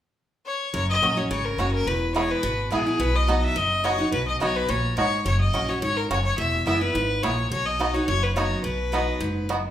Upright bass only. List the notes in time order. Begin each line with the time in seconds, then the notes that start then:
0.74 F#1
1.02 A#1
1.30 G#1
1.58 F#1
1.87 E1
2.43 G#1
2.72 A#1
2.99 B1
3.56 F#1
4.12 B1
4.41 B1
4.69 A#1
4.97 G#1
5.25 F#1
5.82 G#1
6.10 F#1
6.38 E1
6.66 F#1
6.95 G#1
7.23 A#1
7.52 B1
8.08 F#1
8.64 B1
9.21 F#1